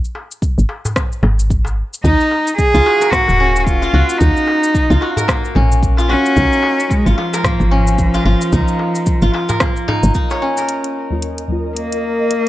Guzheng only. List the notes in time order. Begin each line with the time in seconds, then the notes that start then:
2.05 D#4
2.74 F4
2.86 F#4
3.01 A#4
3.13 A#3
3.40 C#4
3.82 F4
3.94 F#4
4.20 D#4
4.90 F4
5.02 F#4
5.17 A#4
5.29 A#3
5.56 C#4
5.98 F4
6.09 F#4
7.06 F4
7.18 F4
7.34 A#4
7.45 A#3
7.71 C#4
8.14 F4
8.25 F4
8.53 D#4
9.22 F4
9.33 F4
9.49 A#4
9.60 A#3
9.88 D#4
10.15 D#4
10.31 C#5
10.42 C#4
10.58 A#4